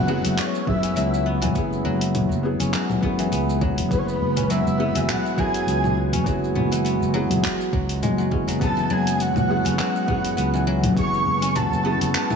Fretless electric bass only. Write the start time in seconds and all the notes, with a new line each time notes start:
Already playing: F#1
0.25 F#1
0.67 F#2
0.97 C#2
1.43 F#1
1.85 F#1
2.30 F#1
2.60 F#1
3.03 F#2
3.33 C#2
3.78 F#1
4.21 F#1
4.66 F#1
4.95 F#1
5.38 F#2
5.67 C#2
6.13 F#1
6.56 F#1
7.01 F#1
7.30 F#1
7.73 C#2
8.03 F#1
8.48 F#1
8.91 F#1
9.36 F#1
9.66 F#1
10.08 F#2
10.38 C#2
10.84 F#1
11.26 F#1
11.72 F#1
12.01 F#1